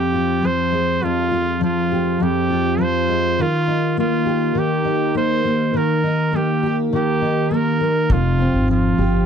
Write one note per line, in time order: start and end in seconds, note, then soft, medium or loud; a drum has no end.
0.00 1.02 F2 medium
0.00 0.41 F3 medium
0.00 0.12 F4 soft
0.00 0.48 G4 medium
0.00 1.91 G4 medium
0.13 1.30 F4 medium
0.42 1.60 F3 medium
0.42 1.05 C5 loud
0.72 3.07 G#3 soft
1.03 2.19 F2 medium
1.03 1.62 F4 medium
1.31 2.49 F4 medium
1.61 2.77 F3 medium
1.61 2.24 F4 medium
1.92 4.25 G4 medium
2.20 3.44 F2 medium
2.20 2.83 G4 medium
2.50 3.44 F4 medium
2.78 3.38 F3 medium
2.78 3.43 C5 loud
3.08 3.44 G#3 soft
3.39 4.54 D#3 medium
3.39 3.99 F4 medium
3.67 4.84 D#4 medium
3.97 5.13 A#3 medium
3.97 4.60 F4 medium
4.26 6.63 G4 medium
4.55 5.73 D#3 medium
4.55 5.16 G4 medium
4.85 6.02 D#4 medium
5.15 5.44 A#3 medium
5.15 5.78 C5 medium
5.45 6.32 A#3 soft
5.74 6.91 D#3 medium
5.74 6.37 A#4 medium
6.03 7.21 D#4 medium
6.33 7.49 A#3 medium
6.33 6.78 G4 medium
6.63 8.71 G4 medium
6.93 8.16 D#3 medium
6.93 7.56 G4 medium
7.22 8.16 D#4 medium
7.51 7.79 A#3 medium
7.55 8.14 A#4 medium
7.80 8.16 A#3 soft
8.10 8.50 F1 medium
8.10 9.26 F2 medium
8.10 8.70 F4 medium
8.10 kick medium
8.39 9.26 C4 medium
8.54 8.94 G#1 medium
8.68 9.26 F3 medium
8.68 9.26 F4 medium
8.98 9.25 G1 medium
8.98 9.26 G4 medium